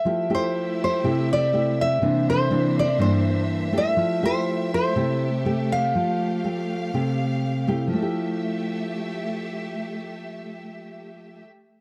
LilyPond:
<<
  \new Staff \with { instrumentName = "Nylon-string guitar" } { \time 4/4 \key f \major \tempo 4 = 122 e''8 c''4 c''4 d''4 e''8~ | e''8 c''4 d''8 c''4. e''8~ | e''8 c''4 c''2 f''8~ | f''2. r4 |
r1 | r1 | }
  \new Staff \with { instrumentName = "String section" } { \time 4/4 \key f \major << { e''1 | e''1~ | e''1 | f''1 |
<a g' e''>1~ | <a g' e''>1 | } \\ { <a e' g'>1 | <bes d' c''>1 | <a g'>1~ | <a g'>1 |
r1 | r1 | } >> }
  \new Staff \with { instrumentName = "Nylon-string guitar" } { \time 4/4 \key f \major << { <a e' g'>8 <a e' g'>4. <a e' g'>8 r8 <a e' g'>8 r8 | <e bes d'>4 <e bes d'>8 r8 <e bes d'>4. <a e' g'>8~ | <a e' g'>8 <a e' g'>4. <a e' g'>8 r8 <a g'>4~ | <a g'>4 <a g'>4 <a g'>4 r8 <a e' g'>8~ |
<a e' g'>8 r2. r8 | r1 | } \\ { f2 c2 | c2 g,2 | f2 c2 | f2 c2 |
<f a e' g'>1~ | <f a e' g'>1 | } >> }
>>